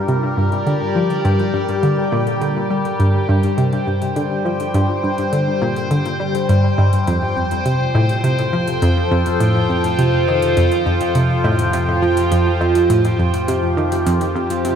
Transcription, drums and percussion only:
0.08 closed hi-hat
0.52 closed hi-hat
0.67 closed hi-hat
1.10 closed hi-hat
1.25 closed hi-hat
1.40 closed hi-hat
1.69 closed hi-hat
1.83 closed hi-hat
2.12 low woodblock
2.27 closed hi-hat
2.42 closed hi-hat
2.85 closed hi-hat
3.00 closed hi-hat
3.29 low woodblock
3.43 closed hi-hat
3.58 closed hi-hat
3.73 closed hi-hat
4.02 closed hi-hat
4.16 closed hi-hat
4.60 closed hi-hat
4.74 closed hi-hat
5.18 closed hi-hat
5.33 closed hi-hat
5.76 closed hi-hat
5.91 closed hi-hat
6.06 closed hi-hat
6.35 closed hi-hat
6.49 closed hi-hat
6.78 low woodblock
6.93 closed hi-hat
7.07 closed hi-hat
7.51 closed hi-hat
7.66 closed hi-hat
7.95 low woodblock
8.09 closed hi-hat
8.24 closed hi-hat
8.39 closed hi-hat
8.68 closed hi-hat
8.82 closed hi-hat
9.26 closed hi-hat
9.40 closed hi-hat
9.84 closed hi-hat
9.99 closed hi-hat
10.42 closed hi-hat
10.57 closed hi-hat
10.72 closed hi-hat
11.01 closed hi-hat
11.15 closed hi-hat
11.44 low woodblock
11.59 closed hi-hat
11.73 closed hi-hat
12.17 closed hi-hat
12.32 closed hi-hat
12.61 low woodblock
12.75 closed hi-hat
12.90 closed hi-hat
13.05 closed hi-hat
13.34 closed hi-hat
13.48 closed hi-hat
13.92 closed hi-hat
14.07 closed hi-hat
14.21 closed hi-hat
14.50 closed hi-hat
14.65 closed hi-hat

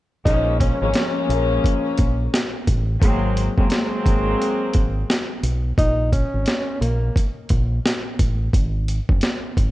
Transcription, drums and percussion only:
0.26 kick, closed hi-hat
0.60 kick, closed hi-hat
0.94 snare, closed hi-hat
1.30 closed hi-hat
1.64 kick, closed hi-hat
1.98 kick, closed hi-hat
2.34 snare, closed hi-hat
2.68 kick, closed hi-hat
3.02 kick, closed hi-hat
3.37 closed hi-hat
3.58 kick
3.70 snare, closed hi-hat
4.05 kick, closed hi-hat
4.41 closed hi-hat
4.73 kick, closed hi-hat
5.10 snare, closed hi-hat
5.43 closed hi-hat
5.78 kick, closed hi-hat
6.12 kick, closed hi-hat
6.46 snare, closed hi-hat
6.82 closed hi-hat
7.16 kick, closed hi-hat
7.49 kick, closed hi-hat
7.86 snare, closed hi-hat
8.19 kick, closed hi-hat
8.53 kick, closed hi-hat
8.88 closed hi-hat
9.09 kick
9.21 snare, closed hi-hat
9.57 kick, closed hi-hat

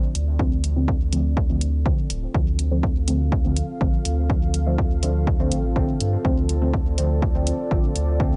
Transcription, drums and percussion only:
0.15 closed hi-hat
0.39 kick
0.64 closed hi-hat
0.88 kick
1.13 closed hi-hat
1.37 kick
1.61 closed hi-hat
1.86 kick
2.10 closed hi-hat
2.35 kick
2.59 closed hi-hat
2.83 kick
3.08 closed hi-hat
3.32 kick
3.56 closed hi-hat
3.81 kick
4.05 closed hi-hat
4.30 kick
4.54 closed hi-hat
4.78 kick
5.03 closed hi-hat
5.27 kick
5.52 closed hi-hat
5.76 kick
6.00 closed hi-hat
6.25 kick
6.49 closed hi-hat
6.74 kick
6.98 closed hi-hat
7.22 kick
7.47 closed hi-hat
7.71 kick
7.96 closed hi-hat
8.20 kick

